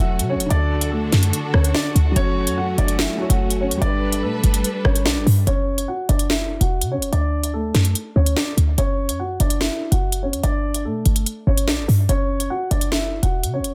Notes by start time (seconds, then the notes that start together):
Already playing: F#3 A3 C#4 F#4 A4 C#5 E5
0.00 E1 F#4 F#5
0.19 C#3, closed hi-hat
0.30 C#4 C#5
0.35 E1
0.40 closed hi-hat
0.46 D3 D4
0.50 D2 D3 D4 F#4 A4 D5, closed hi-hat
0.55 A4
0.81 closed hi-hat
0.92 A3 A4
1.12 F#2, snare, closed hi-hat
1.23 closed hi-hat
1.33 closed hi-hat
1.54 D2 C#4 C#5, cross-stick
1.64 closed hi-hat
1.75 D4 D5, snare
1.95 D2, closed hi-hat
2.12 F#3 F#4
2.16 F#1 A3 C#4 A4 C#5, closed hi-hat
2.47 F#2, closed hi-hat
2.58 F#4 F#5
2.78 F#1 D4 D5, closed hi-hat
2.88 closed hi-hat
2.99 E4 E5, snare
3.18 F#3 F#4 A4
3.22 C#5
3.29 F#1 F#4 F#5, closed hi-hat
3.50 closed hi-hat
3.61 C#4 C#5
3.71 F#2, closed hi-hat
3.77 G3 G4
3.81 G1 G3 D4 A4 B4 D5, closed hi-hat
3.86 B4
4.12 closed hi-hat
4.23 B2 A3 A4
4.44 G1, closed hi-hat
4.54 closed hi-hat
4.64 closed hi-hat
4.85 G1 C#4 C#5, cross-stick
4.95 closed hi-hat
5.06 B1 D4 D5, snare
5.16 G1
5.26 G2, open hi-hat
5.47 F#1 C#4 C#5, closed hi-hat
5.78 closed hi-hat
5.88 F#4 F#5
6.09 F#1 D4 D5, closed hi-hat
6.19 closed hi-hat
6.30 E4 E5, snare
6.61 E1 F#4 F#5, closed hi-hat
6.81 C#3, closed hi-hat
6.92 C#4 C#5
6.97 E1
7.02 closed hi-hat
7.12 D2 D4 D5, closed hi-hat
7.43 closed hi-hat
7.54 A3 A4
7.75 F#2, snare, closed hi-hat
7.85 closed hi-hat
7.95 closed hi-hat
8.16 D2 C#4 C#5
8.26 closed hi-hat
8.37 D4 D5, snare
8.57 D2, closed hi-hat
8.78 F#1 C#4 C#5, closed hi-hat
9.09 F#2, closed hi-hat
9.19 F#4 F#5
9.40 F#1 D4 D5, closed hi-hat
9.50 closed hi-hat
9.60 E4 E5, snare
9.91 F#1 F#4 F#5, closed hi-hat
10.12 closed hi-hat
10.23 C#4 C#5
10.33 F#2, closed hi-hat
10.43 G1 D4 D5, closed hi-hat
10.74 closed hi-hat
10.85 B2 A3 A4
11.06 G1, closed hi-hat
11.16 closed hi-hat
11.26 closed hi-hat
11.47 G1 C#4 C#5
11.57 closed hi-hat
11.68 B1 D4, snare
11.78 G1
11.88 G2, open hi-hat
12.09 F#1 C#4 C#5, closed hi-hat
12.40 closed hi-hat
12.50 F#4 F#5
12.71 F#1 D4 D5, closed hi-hat
12.81 closed hi-hat
12.92 E4 E5, snare
13.23 E1 F#4 F#5, closed hi-hat
13.43 C#3, closed hi-hat
13.54 C#4 C#5
13.59 E1
13.64 closed hi-hat